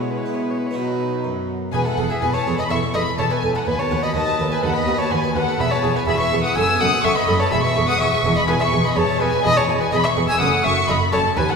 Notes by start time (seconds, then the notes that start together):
Already playing: B2 G#3 B3 E4 F#4 B4
0.01 C#5
0.10 B4
0.17 C#5
0.25 B3 B4
0.34 C#5
0.42 B4
0.50 C#5
0.58 B4
0.67 C#5
0.71 B3 D#4 F#4
0.75 B2 F#3 D#4 F#4 B4
1.24 F#2
1.72 E1 E2 G#4 B4 G#5
1.85 E4 A4 F#5
1.97 E1 E2 G#4
2.09 G#4 E5
2.21 E1 E2 G#4 B4 G#5
2.33 B4 C#5 A5
2.46 E1 E2 G#4 A4
2.57 B4 D#5 B5
2.69 E1 E2 A4 E5 C#6
2.83 E4
2.94 E1 E2 A4 D#5 B5
3.07 E5
3.18 E1 E2 A4 C#5 A5
3.30 B4 C#5 G#5
3.42 E1 E2 A4 B4
3.55 A4 C#5 F#5
3.66 D#2 B4 G#5
3.79 B3 C#5 A5
3.90 D#2 F#4 B4
4.02 B4 D#5 B5
4.14 D#2 F#4 B4 D#5 A5
4.28 B4
4.39 D#2 A4 B4
4.51 B4 G#5
4.63 D#2 A4 B4 F#5
4.74 B3 D#5 B5
4.87 D#2 F#4 B4
4.99 B4 C#5 A5
5.10 D#2 F#4 B4 G#5
5.24 B4
5.35 D#2 A4 B4 F#5
5.48 B4
5.59 E1 E2 G#4 E5 B5
5.71 B3 C#5 A5
5.83 E1 E2 G#4
5.95 B4 G#5
6.06 E1 E2 G#4 E5 B5
6.18 B4 E5 C#6
6.32 E1 E2 G#4 A4
6.42 B4 F#5 D#6
6.54 F#1 F#2 A4 G#5 E6
6.68 B3
6.78 F#1 F#2 A4 F#5 D#6
6.92 B4
7.03 F#1 F#2 A4 E5 C#6
7.15 B4 D#5 B5
7.28 F#1 F#2 A4
7.39 B4 C#5 A5
7.51 E1 E2 G#4 E5 B5
7.63 B3 E5 C#6
7.76 E1 E2 G#4
7.87 B4 F#5 D#6
7.99 E1 E2 G#4 E5 C#6
8.12 E5
8.24 E1 E2 G#4 D#5
8.36 D#5 E5 B5
8.48 E1 E2 E4 G#4 B4 G#5
8.60 B3 E5 C#6
8.72 E1 E2 G#4
8.84 B4 D#5 B5
8.96 E1 E2 G#4 C#5 A5
9.09 E5
9.20 E1 E2 G#4 B4 D#5 G#5
9.33 E5
9.44 E1 E2 G#4 D#5 B5
9.56 G#3 C#5 A5
9.68 E1 E2 G#4
9.80 B4 C#5 G#5
9.92 E1 E2 G#4 D#5 B5
10.04 C#5 E5 C#6
10.16 E1 E2 G#4 B4
10.28 C#5 G#5 E6
10.40 F#1 F#2 A4 F#5 D#6
10.53 F#4
10.64 F#1 F#2 A4 C#5 E5 C#6
10.77 F#5
10.88 F#1 F#2 A4 C#5 D#5 B5
11.01 A4
11.12 F#1 F#2 G#4 A4 C#5 A5
11.25 A4
11.36 D#2 B4 G#5
11.48 A4 F#5